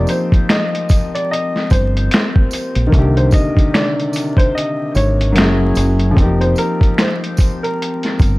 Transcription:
Already playing: felt piano F3 A#3 C4 D#4 G4
0.07 upright piano C5, closed hi-hat, tambourine
0.32 kick, closed hi-hat
0.49 upright piano D#5, finger snap, snare, closed hi-hat
0.75 closed hi-hat
0.89 kick, closed hi-hat, tambourine
1.15 upright piano D5, closed hi-hat
1.31 upright piano D#5, closed hi-hat
1.56 snare
1.70 fingered electric bass G1, upright piano C5, kick, closed hi-hat, tambourine
1.97 closed hi-hat
2.11 finger snap, snare, closed hi-hat
2.36 kick
2.51 closed hi-hat, tambourine
2.75 fingered electric bass A#1, closed hi-hat
2.87 felt piano D#3 A#3
2.92 fingered electric bass C2, felt piano C3 D3, kick, closed hi-hat
2.98 felt piano G4
3.17 upright piano C5, closed hi-hat
3.31 upright piano D#5, kick, closed hi-hat, tambourine
3.57 kick, closed hi-hat
3.74 upright piano D5, finger snap, snare, closed hi-hat
4.00 closed hi-hat
4.13 closed hi-hat, tambourine
4.37 upright piano C5, kick, closed hi-hat
4.55 upright piano D#5, closed hi-hat
4.95 fingered electric bass G#1, upright piano C#5, closed hi-hat, tambourine
5.21 closed hi-hat
5.33 fingered electric bass F#1, felt piano F#3 A#3 C#4, closed hi-hat
5.37 felt piano E4 G#4, finger snap, snare
5.75 fingered electric bass F#1, closed hi-hat, tambourine
5.99 closed hi-hat
6.11 felt piano F3 A3
6.17 fingered electric bass F1, felt piano A#3 C4 D#4, kick, closed hi-hat
6.23 felt piano G4
6.41 upright piano C5, closed hi-hat
6.56 upright piano A#4, closed hi-hat, tambourine
6.81 kick, closed hi-hat
6.98 upright piano C5, finger snap, snare, closed hi-hat
7.24 closed hi-hat
7.37 kick, closed hi-hat, tambourine
7.63 upright piano A#4, closed hi-hat
7.82 closed hi-hat
8.03 snare, closed hi-hat
8.19 fingered electric bass G1, kick, closed hi-hat, tambourine

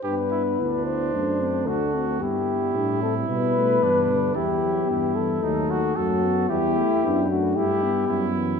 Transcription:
0.03 tuba G2, trombone B3, french horn D4, trumpet G4 B4
0.31 trumpet E4
0.59 tuba D2, trumpet D4, french horn E4
0.85 trumpet C5
1.13 tuba F#2, trombone A3, french horn D4
1.41 french horn C4
1.66 tuba D2, french horn D4, trumpet F#4 A4
1.95 french horn C4
2.20 tuba G2, trombone G3, french horn B3, trumpet E4 G4
2.75 tuba A2, french horn D4
3.03 french horn C4, trumpet A4
3.28 tuba B2, trombone G3, french horn B3, trumpet B4
3.56 french horn A3
3.82 tuba G2, trombone E3, french horn B3, trumpet D4
4.10 trombone D3
4.35 tuba E2, trombone G3, french horn B3, trumpet E4 G4
4.63 trombone F#3
4.89 tuba G2, trombone E3, trumpet E4
5.15 trombone E3, trumpet A4
5.43 tuba D#2, trombone F#3, french horn A3, trumpet D#4
5.70 trumpet F#4
5.96 tuba F#2, trombone F#3, french horn A3, trumpet F#4 A4
6.23 french horn B3
6.49 tuba E2, trombone G3, french horn B3, trumpet E4 G4
6.77 trombone A3
7.03 tuba F#2, trombone B3, french horn D4
7.30 trombone A3, trumpet F#4
7.55 tuba G2, trumpet E4 G4, french horn E4
7.83 french horn B3
8.08 tuba F#2, trombone G3, trumpet E4
8.37 trombone E3

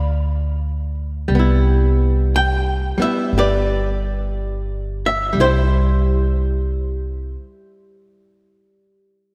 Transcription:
Already playing: upright bass D2, hollow-body jazz guitar G3 D5 F5 B5
1.28 upright bass C2, hollow-body jazz guitar G3
1.35 hollow-body jazz guitar B3
1.39 hollow-body jazz guitar E4
2.36 hollow-body jazz guitar G5
2.98 hollow-body jazz guitar G3 B3 E4, muted upright bass stroke
3.02 hollow-body jazz guitar E5
3.33 upright bass G1
3.38 hollow-body jazz guitar G4 B4 D5
5.06 hollow-body jazz guitar E5
5.33 upright bass C2, hollow-body jazz guitar G3
5.40 hollow-body jazz guitar E4 G4 C5

